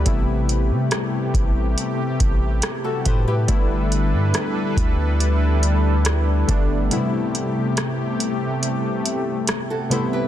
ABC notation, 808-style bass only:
X:1
M:4/4
L:1/16
Q:1/4=70
K:Ador
V:1 name="808-style bass" clef=bass
A,,,3 C, z2 A,,,2 z2 A,,,2 z2 A,,2 | G,,,3 G,, z2 D,,8 G,,,2 | z16 |]